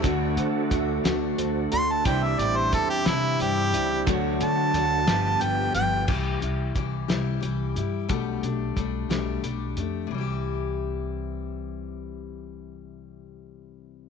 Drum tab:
CC |------|------|------|x-----|
HH |xxxxxx|xxxxxx|xxxxxx|-xxxxx|
SD |---o--|---o--|---o--|---o--|
BD |o-o---|o-o---|o-----|o-o---|

CC |------|------|------|
HH |xxxxxx|------|------|
SD |---o--|------|------|
BD |o-o---|------|------|